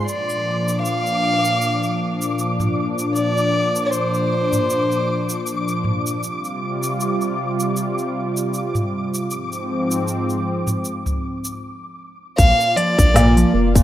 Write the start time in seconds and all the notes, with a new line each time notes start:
0.06 A#2 F3 D4 D5 D6, shaker
0.29 shaker
0.68 shaker
0.82 F5, shaker
1.06 shaker
1.45 shaker
1.62 shaker
1.83 shaker
2.22 shaker
2.39 shaker
2.60 mid tom, shaker
2.99 shaker
3.14 D5, shaker
3.37 shaker
3.76 shaker
3.85 D5
3.91 C5, shaker
4.14 shaker
4.53 mid tom, shaker
4.70 shaker
4.92 shaker
5.29 shaker
5.47 shaker
5.68 shaker
5.84 mid tom
6.06 shaker
6.21 C3 G3 F4, shaker
6.44 shaker
6.83 shaker
7.00 shaker
7.21 shaker
7.60 shaker
7.77 shaker
7.98 shaker
8.37 shaker
8.54 shaker
8.75 mid tom, shaker
9.14 shaker
9.30 G#2 F3 C4, shaker
9.52 shaker
9.91 shaker
10.08 shaker
10.30 shaker
10.67 mid tom, shaker
10.85 shaker
11.06 mid tom, shaker
11.45 shaker
12.37 A#1 A#2 A#3 F4 D5 F5, kick, open hi-hat, shaker
12.61 shaker
12.76 F3 D5, open hi-hat
12.98 A#1 D4, kick, open hi-hat, shaker
13.14 A#2, snare, mid tom, open hi-hat, shaker
13.36 F3, open hi-hat, shaker
13.53 F1 A#3
13.75 A#2, kick, open hi-hat, shaker